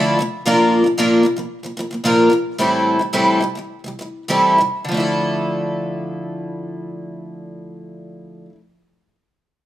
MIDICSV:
0, 0, Header, 1, 2, 480
1, 0, Start_track
1, 0, Key_signature, -1, "minor"
1, 0, Tempo, 524476
1, 421, Time_signature, 4, 2, 24, 8
1, 1865, Tempo, 553506
1, 3305, Tempo, 591716
1, 4265, Tempo, 611621
1, 8013, End_track
2, 0, Start_track
2, 0, Title_t, "Twelve-string acoustic guitar"
2, 0, Program_c, 0, 25
2, 0, Note_on_c, 0, 50, 76
2, 0, Note_on_c, 0, 53, 74
2, 0, Note_on_c, 0, 57, 82
2, 0, Note_on_c, 0, 62, 86
2, 0, Note_on_c, 0, 64, 90
2, 0, Note_on_c, 0, 69, 85
2, 161, Note_off_c, 0, 50, 0
2, 172, Note_on_c, 0, 50, 64
2, 177, Note_off_c, 0, 53, 0
2, 186, Note_off_c, 0, 57, 0
2, 188, Note_on_c, 0, 53, 64
2, 189, Note_off_c, 0, 62, 0
2, 189, Note_off_c, 0, 64, 0
2, 191, Note_off_c, 0, 69, 0
2, 200, Note_on_c, 0, 57, 69
2, 368, Note_off_c, 0, 50, 0
2, 376, Note_off_c, 0, 53, 0
2, 382, Note_off_c, 0, 57, 0
2, 417, Note_on_c, 0, 46, 69
2, 422, Note_on_c, 0, 53, 79
2, 424, Note_on_c, 0, 58, 78
2, 430, Note_on_c, 0, 62, 83
2, 435, Note_on_c, 0, 65, 82
2, 437, Note_on_c, 0, 70, 78
2, 758, Note_off_c, 0, 46, 0
2, 769, Note_on_c, 0, 46, 46
2, 779, Note_off_c, 0, 53, 0
2, 780, Note_off_c, 0, 58, 0
2, 783, Note_off_c, 0, 62, 0
2, 785, Note_off_c, 0, 65, 0
2, 787, Note_off_c, 0, 70, 0
2, 788, Note_on_c, 0, 53, 47
2, 798, Note_on_c, 0, 58, 46
2, 883, Note_off_c, 0, 46, 0
2, 889, Note_off_c, 0, 53, 0
2, 893, Note_off_c, 0, 58, 0
2, 894, Note_on_c, 0, 46, 79
2, 900, Note_on_c, 0, 53, 76
2, 903, Note_on_c, 0, 58, 88
2, 907, Note_on_c, 0, 62, 86
2, 911, Note_on_c, 0, 65, 83
2, 914, Note_on_c, 0, 70, 91
2, 1116, Note_off_c, 0, 46, 0
2, 1127, Note_on_c, 0, 46, 47
2, 1131, Note_off_c, 0, 53, 0
2, 1140, Note_off_c, 0, 58, 0
2, 1142, Note_off_c, 0, 62, 0
2, 1142, Note_on_c, 0, 53, 52
2, 1144, Note_off_c, 0, 65, 0
2, 1146, Note_off_c, 0, 70, 0
2, 1154, Note_on_c, 0, 58, 60
2, 1237, Note_off_c, 0, 46, 0
2, 1248, Note_on_c, 0, 46, 49
2, 1250, Note_off_c, 0, 53, 0
2, 1261, Note_off_c, 0, 58, 0
2, 1261, Note_on_c, 0, 53, 51
2, 1272, Note_on_c, 0, 58, 52
2, 1446, Note_off_c, 0, 46, 0
2, 1453, Note_off_c, 0, 53, 0
2, 1458, Note_off_c, 0, 58, 0
2, 1493, Note_on_c, 0, 46, 45
2, 1504, Note_on_c, 0, 53, 50
2, 1518, Note_on_c, 0, 58, 57
2, 1608, Note_off_c, 0, 46, 0
2, 1619, Note_on_c, 0, 46, 61
2, 1623, Note_off_c, 0, 53, 0
2, 1630, Note_off_c, 0, 58, 0
2, 1638, Note_on_c, 0, 53, 67
2, 1650, Note_on_c, 0, 58, 64
2, 1734, Note_off_c, 0, 46, 0
2, 1745, Note_on_c, 0, 46, 46
2, 1752, Note_off_c, 0, 53, 0
2, 1758, Note_off_c, 0, 58, 0
2, 1762, Note_on_c, 0, 53, 46
2, 1775, Note_on_c, 0, 58, 46
2, 1853, Note_off_c, 0, 46, 0
2, 1864, Note_off_c, 0, 53, 0
2, 1864, Note_on_c, 0, 46, 70
2, 1865, Note_off_c, 0, 58, 0
2, 1874, Note_on_c, 0, 53, 76
2, 1876, Note_on_c, 0, 58, 77
2, 1880, Note_on_c, 0, 62, 78
2, 1881, Note_on_c, 0, 65, 88
2, 1890, Note_on_c, 0, 70, 77
2, 2079, Note_off_c, 0, 46, 0
2, 2090, Note_on_c, 0, 46, 60
2, 2095, Note_off_c, 0, 53, 0
2, 2105, Note_off_c, 0, 58, 0
2, 2105, Note_on_c, 0, 53, 57
2, 2107, Note_off_c, 0, 62, 0
2, 2107, Note_off_c, 0, 65, 0
2, 2111, Note_off_c, 0, 70, 0
2, 2283, Note_off_c, 0, 46, 0
2, 2291, Note_off_c, 0, 53, 0
2, 2339, Note_on_c, 0, 45, 71
2, 2345, Note_on_c, 0, 52, 72
2, 2350, Note_on_c, 0, 55, 67
2, 2352, Note_on_c, 0, 60, 69
2, 2355, Note_on_c, 0, 64, 78
2, 2362, Note_on_c, 0, 69, 71
2, 2683, Note_off_c, 0, 45, 0
2, 2693, Note_on_c, 0, 45, 46
2, 2699, Note_off_c, 0, 52, 0
2, 2701, Note_off_c, 0, 55, 0
2, 2702, Note_off_c, 0, 60, 0
2, 2704, Note_off_c, 0, 64, 0
2, 2707, Note_off_c, 0, 69, 0
2, 2708, Note_on_c, 0, 52, 49
2, 2718, Note_on_c, 0, 55, 49
2, 2800, Note_off_c, 0, 45, 0
2, 2804, Note_off_c, 0, 52, 0
2, 2806, Note_off_c, 0, 55, 0
2, 2810, Note_on_c, 0, 45, 67
2, 2814, Note_on_c, 0, 52, 78
2, 2816, Note_on_c, 0, 55, 83
2, 2818, Note_on_c, 0, 60, 70
2, 2825, Note_on_c, 0, 64, 74
2, 2830, Note_on_c, 0, 69, 75
2, 3041, Note_off_c, 0, 45, 0
2, 3052, Note_on_c, 0, 45, 49
2, 3055, Note_off_c, 0, 52, 0
2, 3059, Note_off_c, 0, 55, 0
2, 3061, Note_off_c, 0, 60, 0
2, 3064, Note_off_c, 0, 64, 0
2, 3065, Note_on_c, 0, 52, 52
2, 3066, Note_off_c, 0, 69, 0
2, 3078, Note_on_c, 0, 55, 59
2, 3169, Note_off_c, 0, 45, 0
2, 3179, Note_on_c, 0, 45, 43
2, 3185, Note_off_c, 0, 52, 0
2, 3192, Note_off_c, 0, 55, 0
2, 3196, Note_on_c, 0, 52, 45
2, 3207, Note_on_c, 0, 55, 49
2, 3375, Note_off_c, 0, 45, 0
2, 3382, Note_off_c, 0, 52, 0
2, 3388, Note_off_c, 0, 55, 0
2, 3421, Note_on_c, 0, 45, 47
2, 3437, Note_on_c, 0, 52, 43
2, 3450, Note_on_c, 0, 55, 53
2, 3531, Note_off_c, 0, 45, 0
2, 3541, Note_on_c, 0, 45, 52
2, 3548, Note_off_c, 0, 52, 0
2, 3554, Note_off_c, 0, 55, 0
2, 3557, Note_on_c, 0, 52, 51
2, 3566, Note_on_c, 0, 55, 57
2, 3731, Note_off_c, 0, 45, 0
2, 3739, Note_off_c, 0, 52, 0
2, 3744, Note_off_c, 0, 55, 0
2, 3780, Note_on_c, 0, 45, 77
2, 3784, Note_on_c, 0, 52, 71
2, 3790, Note_on_c, 0, 55, 73
2, 3791, Note_on_c, 0, 60, 69
2, 3796, Note_on_c, 0, 64, 78
2, 3800, Note_on_c, 0, 69, 74
2, 4012, Note_off_c, 0, 45, 0
2, 4022, Note_on_c, 0, 45, 49
2, 4023, Note_off_c, 0, 52, 0
2, 4026, Note_off_c, 0, 55, 0
2, 4027, Note_off_c, 0, 60, 0
2, 4029, Note_off_c, 0, 64, 0
2, 4031, Note_off_c, 0, 69, 0
2, 4041, Note_on_c, 0, 52, 59
2, 4218, Note_off_c, 0, 45, 0
2, 4227, Note_off_c, 0, 52, 0
2, 4236, Note_on_c, 0, 50, 58
2, 4268, Note_on_c, 0, 53, 65
2, 4291, Note_on_c, 0, 57, 65
2, 4313, Note_on_c, 0, 62, 62
2, 4335, Note_on_c, 0, 64, 62
2, 4356, Note_on_c, 0, 69, 62
2, 7067, Note_off_c, 0, 50, 0
2, 7098, Note_off_c, 0, 53, 0
2, 7121, Note_off_c, 0, 57, 0
2, 7143, Note_off_c, 0, 62, 0
2, 7165, Note_off_c, 0, 64, 0
2, 7187, Note_off_c, 0, 69, 0
2, 8013, End_track
0, 0, End_of_file